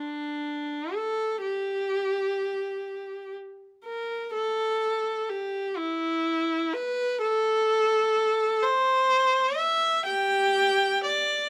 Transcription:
Already playing: D4
0.95 A4
1.42 G4
3.85 A#4
4.34 A4
5.29 G4
5.77 E4
6.73 B4
7.21 A4
8.63 C5
9.57 E5
10.05 G4 G5
11.04 D5

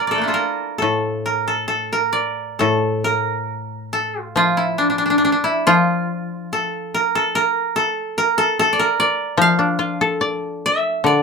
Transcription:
Already playing: A#4
0.07 A4 D5
0.12 A3 D5
0.18 A#3 D4
0.24 E4
0.28 F4 A4
0.34 A#4
0.78 A2 A4
1.26 A#4
1.48 A4
1.68 A4
1.93 A#4
2.13 D5
2.59 A2 A4
3.04 A#4
3.93 A4
4.22 F4
4.36 F3 F4
4.57 E4
4.78 D4
4.90 D4
4.98 D4
5.06 D4
5.10 D4
5.18 D4
5.25 D4
5.32 D4
5.44 E4
5.67 F3 F4
6.53 A4
6.94 A#4
7.15 A4
7.35 A#4
7.76 A4
8.18 A#4
8.38 A4
8.59 A4
8.73 D5
8.79 A#4
9.00 D5
9.37 F3
9.41 F5
9.59 D4
9.79 F4
10.01 A4
10.21 D5
10.66 E5
11.04 D3 D5

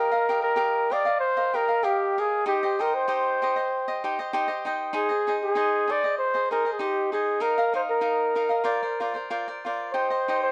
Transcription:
Already playing: A#4 D#5 F5
0.11 A#4 D#5 F5
0.29 G4 A#4 D#5 F5
0.43 A#4
0.56 G4 A#4 D#5 F5
0.90 G4 A#4 D5 D#5 F5
1.05 A#4 D#5 F5
1.20 C5
1.37 A#4 D#5 F5
1.53 G4 A#4 D#5 F5
1.68 A#4 D#5 F5
1.83 G4 A#4 D#5 F5
2.18 G#4 A#4 D#5 F5
2.46 D#4 G4 C5 D#5
2.63 G4 C5 D#5
2.79 D#4 G4 A#4 C5 D#5
2.95 C5
3.08 D#4 G4 C5 D#5
3.42 D#4 G4 C5 D#5
3.56 G4 C5 D#5
3.88 G4 C5 D#5
4.04 D#4 G4 C5 D#5
4.19 G4 C5 D#5
4.33 D#4 G4 C5 D#5
4.48 G4 C5 D#5
4.65 D#4 G4 C5 D#5
4.93 D#4 G#4 C5 D#5
5.09 G#4 C5 D#5
5.27 D#4 G#4 C5 D#5
5.44 G#4
5.55 D#4 G#4 C5 D#5
5.88 D#4 G#4 C5 D5 D#5
6.04 G#4 C5 D#5
6.19 C5
6.34 G#4 C5 D#5
6.51 D#4 G#4 A#4 C5 D#5
6.65 G#4 C5 D#5
6.73 G#4
6.79 D#4 G4 C5 D#5
7.12 D#4 G#4 C5 D#5
7.40 D#4 A#4 D#5 F5
7.58 A#4 D#5 F5
7.73 D#4 A#4 C5 D#5 F5
7.90 A#4
8.01 D#4 A#4 D#5 F5
8.35 D#4 A#4 D#5 F5
8.49 A#4 D#5 F5
8.64 F4 A#4 C5 D5
8.83 A#4 C5 D5
9.00 F4 A#4 C5 D5
9.14 A#4 C5 D5
9.30 F4 A#4 C5 D5
9.48 A#4 C5 D5
9.65 F4 A#4 C5 D5
9.93 D#4 G4 C5 D#5
10.10 G4 C5 D#5
10.28 D#4 G4 C5 D#5
10.43 C5

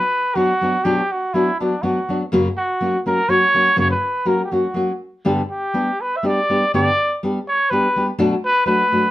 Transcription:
Already playing: B4
0.35 F#3 B3 D4 F#4
0.61 F#3 B3 D4 F#4
0.84 B2 F#3 B3 D4 F#4 G4
1.12 F#4
1.34 F#3 B3 D4 E4 F#4
1.60 F#3 B3 D4 F#4
1.82 F#3 B3 D4 F#4
2.09 F#3 B3 D4 F#4
2.32 F#2 C#3 F#3 A#3 C#4 F#4
2.57 F#4
2.81 F#3 A#3 C#4 F#4
3.06 F#3 A#3 C#4 F#4 A#4
3.29 F#3 A#3 C#4 F#4 C#5
3.54 F#3 A#3 C#4 F#4
3.76 F#2 C#3 F#3 A#3 C#4 F#4 C#5
3.91 B4
4.25 F#3 A#3 C#4 F#4 A#4
4.45 G4
4.51 F#3 A#3 C#4 F#4
4.74 F#3 A#3 C#4 F#4
5.25 G2 D3 G3 B3 D4 G4
5.51 G4
5.74 G3 B3 D4 G4
6.01 B4
6.17 E5
6.23 G3 B3 D4 G4 D5
6.50 G3 B3 D4 G4
6.74 G2 D3 G3 B3 D4 G4 D5
7.23 G3 B3 D4 G4
7.48 C#5
7.70 G3 B3 D4 G4 B4
7.96 G3 B3 D4 G4
8.19 B2 F#3 A3 D4 F#4
8.45 B4
8.66 F#3 A3 D4 F#4 B4
8.92 F#3 A3 D4 F#4

